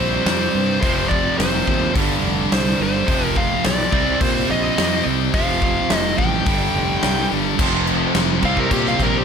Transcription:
0.00 0.20 A#1 medium
0.00 0.23 C3 medium
0.00 0.24 G3 medium
0.00 0.24 C4 loud
0.00 1.91 C4 medium
0.00 1.91 G4 medium
0.00 0.78 C5 medium
0.00 0.81 D5 medium
0.26 0.48 F2 medium
0.26 0.81 C3 medium
0.26 0.81 G3 medium
0.26 0.82 C4 medium
0.26 snare loud
0.26 open hi-hat medium
0.55 0.77 G2 medium
0.80 1.27 F1 loud
0.80 1.65 F2 medium
0.80 1.66 C3 loud
0.80 1.93 F3 medium
0.80 1.08 C5 medium
0.80 kick loud
0.80 open hi-hat medium
0.84 1.66 F3 loud
1.09 1.38 D5 medium
1.09 kick medium
1.38 1.61 F1 medium
1.38 1.91 C5 medium
1.38 snare loud
1.38 open hi-hat medium
1.67 1.90 D#2 medium
1.67 1.93 F2 medium
1.67 1.94 C3 medium
1.67 1.94 F3 medium
1.67 kick medium
1.94 2.18 G1 medium
1.94 2.77 G2 medium
1.94 2.78 D3 medium
1.94 3.07 G3 medium
1.94 2.78 G3 medium
1.94 3.07 D4 medium
1.94 3.07 A4 medium
1.94 kick loud
1.94 open hi-hat medium
2.23 2.45 F1 medium
2.52 2.74 C2 medium
2.52 2.81 C5 medium
2.52 snare loud
2.52 open hi-hat medium
2.79 3.02 G1 medium
2.79 3.07 G2 medium
2.79 3.07 D3 medium
2.79 3.06 G3 medium
2.79 3.27 C5 medium
3.08 3.53 F1 loud
3.08 3.91 F2 loud
3.08 3.91 C3 loud
3.08 3.93 F3 medium
3.08 3.92 F3 loud
3.08 6.44 C4 medium
3.08 6.43 G4 medium
3.08 kick loud
3.08 open hi-hat medium
3.27 3.39 A#4 medium
3.36 3.66 F5 loud
3.36 kick medium
3.64 3.87 B1 medium
3.64 4.21 D5 loud
3.64 snare loud
3.64 open hi-hat medium
3.92 4.15 C2 loud
3.92 4.75 C3 loud
3.92 4.76 G3 loud
3.92 4.76 C4 loud
3.92 5.33 D#5 medium
3.92 kick medium
4.21 4.43 A#2 medium
4.21 4.50 C5 medium
4.21 kick loud
4.21 open hi-hat medium
4.50 4.72 A#1 medium
4.50 5.02 D#5 medium
4.78 5.00 F2 medium
4.78 5.32 C3 medium
4.78 5.33 G3 medium
4.78 5.33 C4 medium
4.78 snare loud
4.78 open hi-hat medium
5.06 5.28 C2 loud
5.33 5.78 F1 loud
5.33 6.16 F2 medium
5.33 6.17 C3 loud
5.33 6.46 F3 medium
5.33 6.16 F3 loud
5.33 5.97 F5 loud
5.33 kick loud
5.33 open hi-hat medium
5.62 kick medium
5.90 6.13 F1 medium
5.90 snare loud
5.90 open hi-hat medium
5.97 6.18 D#5 loud
6.17 6.40 A1 medium
6.17 6.45 F2 medium
6.17 6.45 C3 medium
6.17 6.44 F3 medium
6.17 7.27 G5 loud
6.17 kick medium
6.45 6.69 G1 medium
6.45 7.28 G2 medium
6.45 7.29 D3 medium
6.45 7.58 G3 medium
6.45 7.29 G3 medium
6.45 7.58 D4 medium
6.45 7.58 A4 medium
6.45 kick loud
6.45 open hi-hat medium
6.74 6.96 F1 medium
7.03 7.25 C2 medium
7.03 snare loud
7.03 open hi-hat medium
7.30 7.54 G1 medium
7.30 7.58 G2 medium
7.30 7.58 D3 medium
7.30 7.57 G3 medium
7.58 8.04 F1 loud
7.58 8.41 F2 medium
7.58 8.41 C3 medium
7.58 8.42 F3 medium
7.58 8.43 F3 loud
7.58 8.41 C4 medium
7.58 9.24 G4 medium
7.58 kick loud
7.58 crash loud
7.58 crash medium
7.87 crash medium
8.15 8.37 F1 medium
8.15 snare loud
8.15 crash medium
8.42 8.65 C2 medium
8.42 9.24 C3 medium
8.42 9.24 G3 loud
8.42 9.24 C4 medium
8.42 9.24 C4 loud
8.42 9.24 D5 medium
8.42 8.58 F5 loud
8.42 kick medium
8.42 crash medium
8.57 8.72 A#4 medium
8.57 kick medium
8.71 8.93 A#2 medium
8.71 8.86 G4 medium
8.71 kick loud
8.71 crash medium
8.86 9.00 F5 loud
8.86 snare soft
8.99 9.22 A#1 medium
8.99 9.18 A#4 medium
8.99 kick medium
8.99 crash medium
9.18 9.24 G4 medium

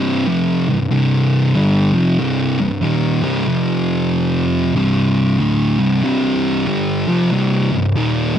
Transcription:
0.00 0.27 C2 medium
0.00 0.27 G2 medium
0.00 0.27 C3 loud
0.27 0.66 F2 loud
0.27 0.66 C3 loud
0.27 0.66 F3 loud
0.68 0.87 C2 medium
0.68 0.87 G2 medium
0.91 1.54 C2 loud
0.91 1.54 G2 loud
0.91 1.55 C3 loud
1.56 1.93 G2 loud
1.56 1.94 D3 loud
1.56 1.94 G3 loud
1.94 2.18 F2 loud
1.94 2.18 C3 loud
1.94 2.19 F3 loud
2.19 2.58 C2 loud
2.19 2.58 G2 loud
2.19 2.58 C3 loud
2.59 2.79 C2 medium
2.59 2.79 G2 medium
2.83 3.22 D#2 medium
2.83 3.22 A#2 medium
2.83 3.22 D#3 loud
3.23 3.47 C2 medium
3.23 3.47 G2 medium
3.23 3.46 C3 loud
3.47 4.74 F2 loud
3.47 4.74 C3 loud
3.47 4.75 F3 loud
4.75 5.38 C2 medium
4.75 5.39 G2 loud
4.75 5.39 C3 loud
5.39 5.78 D2 medium
5.39 5.78 A2 medium
5.39 5.78 D3 loud
5.78 6.02 C2 medium
5.78 6.03 G2 loud
5.78 6.03 C3 loud
6.03 6.66 C2 loud
6.03 6.65 G2 loud
6.03 6.67 C3 loud
6.67 7.06 G2 medium
6.67 7.06 D3 medium
6.67 7.06 G3 loud
7.08 7.31 F2 medium
7.08 7.31 C3 medium
7.08 7.31 F3 loud
7.32 7.70 C2 loud
7.32 7.71 G2 loud
7.32 7.71 C3 loud
7.72 7.91 C2 medium
7.72 7.91 G2 medium
7.96 8.34 D#2 loud
7.96 8.34 A#2 loud
7.96 8.35 D#3 loud
8.36 8.39 C2 medium

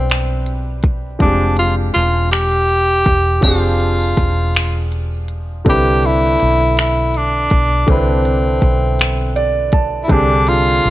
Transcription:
0.00 1.17 B1 medium
0.00 1.17 G3 soft
0.00 0.84 C4 medium
0.00 1.16 C4 medium
0.00 1.18 D4 medium
0.00 1.19 G4 medium
0.00 1.17 B4 soft
0.10 finger snap medium
0.10 closed hi-hat medium
0.46 closed hi-hat soft
0.83 kick medium
0.83 closed hi-hat soft
1.19 1.91 F1 medium
1.19 3.38 F3 medium
1.19 3.39 C4 soft
1.19 3.39 D4 soft
1.19 1.56 D4 medium
1.19 3.40 G4 medium
1.19 kick medium
1.19 closed hi-hat medium
1.24 3.41 G#3 medium
1.57 1.75 F4 medium
1.57 closed hi-hat soft
1.94 3.03 E1 medium
1.94 2.29 F4 medium
1.94 closed hi-hat soft
2.31 3.45 G4 loud
2.31 finger snap loud
2.31 closed hi-hat medium
2.69 closed hi-hat soft
3.05 3.40 E1 medium
3.05 kick medium
3.05 closed hi-hat soft
3.41 4.14 F1 medium
3.41 5.60 F3 medium
3.41 5.61 C4 soft
3.41 5.62 D4 soft
3.41 4.92 F4 medium
3.41 5.62 G4 medium
3.41 kick medium
3.41 closed hi-hat medium
3.46 5.63 G#4 medium
3.80 closed hi-hat soft
4.17 5.62 E1 medium
4.17 kick medium
4.17 closed hi-hat soft
4.55 finger snap medium
4.55 closed hi-hat medium
4.92 closed hi-hat soft
5.28 closed hi-hat soft
5.65 6.36 C2 medium
5.65 7.83 D3 medium
5.65 7.84 C4 medium
5.65 7.85 D4 soft
5.65 kick loud
5.65 closed hi-hat medium
5.69 7.85 E4 soft
5.69 6.07 G4 loud
5.69 7.86 B4 medium
6.03 6.78 E4 loud
6.03 closed hi-hat soft
6.40 7.48 B1 medium
6.40 closed hi-hat medium
6.77 7.19 E4 medium
6.77 finger snap loud
6.77 closed hi-hat medium
7.14 7.91 D4 medium
7.14 closed hi-hat soft
7.50 7.85 B1 medium
7.50 kick medium
7.50 closed hi-hat medium
7.87 8.58 C2 medium
7.87 10.05 D3 medium
7.87 10.06 C4 soft
7.87 9.74 C4 medium
7.87 10.07 D4 soft
7.87 kick medium
7.87 closed hi-hat medium
7.91 10.07 E4 medium
7.91 10.08 B4 medium
8.25 closed hi-hat soft
8.62 10.06 B1 medium
8.62 kick medium
8.62 closed hi-hat soft
8.99 finger snap medium
8.99 closed hi-hat medium
9.36 9.70 D5 medium
9.36 closed hi-hat soft
9.72 10.08 A5 medium
9.72 kick medium
9.72 closed hi-hat soft
10.04 10.90 D3 medium
10.04 10.13 E4 medium
10.09 10.80 C2 medium
10.09 10.90 C4 medium
10.09 10.90 D4 medium
10.09 10.50 D4 medium
10.09 10.90 G4 medium
10.09 10.90 G#4 medium
10.09 kick loud
10.09 closed hi-hat medium
10.47 10.90 F4 loud
10.47 closed hi-hat soft
10.84 10.90 B1 medium
10.84 closed hi-hat soft

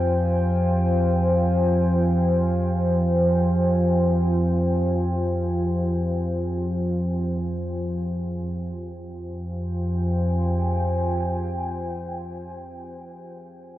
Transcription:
0.00 8.45 F2 medium
0.00 8.44 F3 medium
0.00 8.46 F4 medium
0.00 8.47 C5 medium
0.00 8.47 G5 medium
0.00 8.48 G#5 medium
8.45 12.41 F2 medium
8.45 12.40 F3 medium
8.45 12.42 F4 medium
8.66 12.61 C5 medium
8.85 12.80 G5 medium
9.03 12.98 G#5 medium

